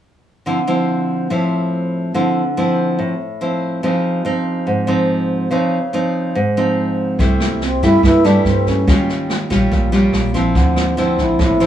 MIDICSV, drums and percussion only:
0, 0, Header, 1, 2, 480
1, 0, Start_track
1, 0, Tempo, 420168
1, 535, Time_signature, 4, 2, 24, 8
1, 13325, End_track
2, 0, Start_track
2, 0, Title_t, "Drums"
2, 8214, Note_on_c, 9, 36, 52
2, 8214, Note_on_c, 9, 38, 22
2, 8328, Note_off_c, 9, 38, 0
2, 8329, Note_off_c, 9, 36, 0
2, 8457, Note_on_c, 9, 37, 54
2, 8457, Note_on_c, 9, 38, 19
2, 8571, Note_off_c, 9, 37, 0
2, 8571, Note_off_c, 9, 38, 0
2, 8699, Note_on_c, 9, 38, 23
2, 8813, Note_off_c, 9, 38, 0
2, 8937, Note_on_c, 9, 36, 21
2, 8942, Note_on_c, 9, 38, 22
2, 9052, Note_off_c, 9, 36, 0
2, 9056, Note_off_c, 9, 38, 0
2, 9178, Note_on_c, 9, 36, 51
2, 9181, Note_on_c, 9, 37, 52
2, 9181, Note_on_c, 9, 38, 21
2, 9293, Note_off_c, 9, 36, 0
2, 9295, Note_off_c, 9, 37, 0
2, 9295, Note_off_c, 9, 38, 0
2, 9422, Note_on_c, 9, 38, 21
2, 9537, Note_off_c, 9, 38, 0
2, 9659, Note_on_c, 9, 38, 21
2, 9773, Note_off_c, 9, 38, 0
2, 9899, Note_on_c, 9, 36, 19
2, 9901, Note_on_c, 9, 38, 22
2, 10013, Note_off_c, 9, 36, 0
2, 10015, Note_off_c, 9, 38, 0
2, 10140, Note_on_c, 9, 36, 54
2, 10143, Note_on_c, 9, 37, 52
2, 10143, Note_on_c, 9, 38, 21
2, 10254, Note_off_c, 9, 36, 0
2, 10257, Note_off_c, 9, 37, 0
2, 10257, Note_off_c, 9, 38, 0
2, 10386, Note_on_c, 9, 38, 22
2, 10501, Note_off_c, 9, 38, 0
2, 10621, Note_on_c, 9, 37, 52
2, 10621, Note_on_c, 9, 38, 21
2, 10735, Note_off_c, 9, 37, 0
2, 10735, Note_off_c, 9, 38, 0
2, 10860, Note_on_c, 9, 36, 22
2, 10861, Note_on_c, 9, 38, 20
2, 10974, Note_off_c, 9, 36, 0
2, 10975, Note_off_c, 9, 38, 0
2, 11099, Note_on_c, 9, 36, 49
2, 11102, Note_on_c, 9, 38, 22
2, 11214, Note_off_c, 9, 36, 0
2, 11216, Note_off_c, 9, 38, 0
2, 11340, Note_on_c, 9, 38, 20
2, 11455, Note_off_c, 9, 38, 0
2, 11576, Note_on_c, 9, 37, 50
2, 11576, Note_on_c, 9, 38, 21
2, 11690, Note_off_c, 9, 37, 0
2, 11690, Note_off_c, 9, 38, 0
2, 11817, Note_on_c, 9, 36, 20
2, 11819, Note_on_c, 9, 38, 20
2, 11931, Note_off_c, 9, 36, 0
2, 11933, Note_off_c, 9, 38, 0
2, 12055, Note_on_c, 9, 36, 51
2, 12055, Note_on_c, 9, 38, 22
2, 12169, Note_off_c, 9, 38, 0
2, 12170, Note_off_c, 9, 36, 0
2, 12294, Note_on_c, 9, 37, 47
2, 12294, Note_on_c, 9, 38, 21
2, 12408, Note_off_c, 9, 37, 0
2, 12408, Note_off_c, 9, 38, 0
2, 12537, Note_on_c, 9, 38, 24
2, 12651, Note_off_c, 9, 38, 0
2, 12775, Note_on_c, 9, 36, 22
2, 12776, Note_on_c, 9, 38, 24
2, 12889, Note_off_c, 9, 36, 0
2, 12891, Note_off_c, 9, 38, 0
2, 13015, Note_on_c, 9, 36, 53
2, 13016, Note_on_c, 9, 37, 50
2, 13016, Note_on_c, 9, 38, 22
2, 13129, Note_off_c, 9, 36, 0
2, 13130, Note_off_c, 9, 37, 0
2, 13130, Note_off_c, 9, 38, 0
2, 13255, Note_on_c, 9, 38, 22
2, 13325, Note_off_c, 9, 38, 0
2, 13325, End_track
0, 0, End_of_file